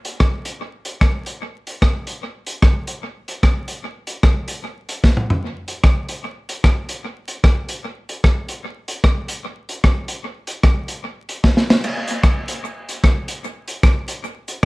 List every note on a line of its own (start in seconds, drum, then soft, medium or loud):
0.05 closed hi-hat medium
0.20 kick loud
0.20 cross-stick loud
0.45 closed hi-hat medium
0.85 closed hi-hat medium
1.01 kick loud
1.01 cross-stick loud
1.26 closed hi-hat medium
1.67 closed hi-hat medium
1.82 kick loud
1.82 cross-stick loud
2.07 closed hi-hat medium
2.46 closed hi-hat medium
2.62 kick loud
2.62 cross-stick loud
2.87 closed hi-hat loud
3.28 closed hi-hat medium
3.43 kick loud
3.43 cross-stick loud
3.68 closed hi-hat medium
4.07 closed hi-hat medium
4.23 kick loud
4.23 cross-stick loud
4.48 closed hi-hat medium
4.89 closed hi-hat medium
5.04 kick loud
5.04 snare medium
5.17 mid tom medium
5.30 floor tom medium
5.68 closed hi-hat medium
5.83 kick loud
5.83 cross-stick loud
6.08 closed hi-hat medium
6.49 closed hi-hat medium
6.64 kick medium
6.64 cross-stick loud
6.89 closed hi-hat medium
7.28 closed hi-hat medium
7.44 kick loud
7.44 cross-stick loud
7.69 closed hi-hat loud
8.09 closed hi-hat medium
8.24 kick loud
8.24 cross-stick loud
8.49 closed hi-hat medium
8.88 closed hi-hat medium
9.04 kick loud
9.04 cross-stick loud
9.28 closed hi-hat medium
9.69 closed hi-hat medium
9.84 kick loud
9.84 cross-stick loud
10.08 closed hi-hat medium
10.47 closed hi-hat medium
10.63 kick loud
10.63 cross-stick loud
10.88 closed hi-hat medium
11.29 closed hi-hat medium
11.44 kick loud
11.44 snare medium
11.57 snare medium
11.70 snare loud
11.84 crash medium
11.84 cabasa soft
12.08 closed hi-hat medium
12.08 cabasa medium
12.23 kick loud
12.23 cross-stick loud
12.23 cabasa soft
12.48 closed hi-hat loud
12.48 cabasa medium
12.65 cabasa medium
12.89 closed hi-hat medium
12.89 cabasa medium
13.04 kick loud
13.04 cross-stick loud
13.04 cabasa medium
13.28 closed hi-hat medium
13.28 cabasa medium
13.44 cabasa soft
13.68 closed hi-hat medium
13.68 cabasa medium
13.83 kick loud
13.83 cross-stick loud
13.83 cabasa soft
14.08 closed hi-hat medium
14.08 cabasa medium
14.24 cabasa soft
14.48 closed hi-hat medium
14.48 cabasa medium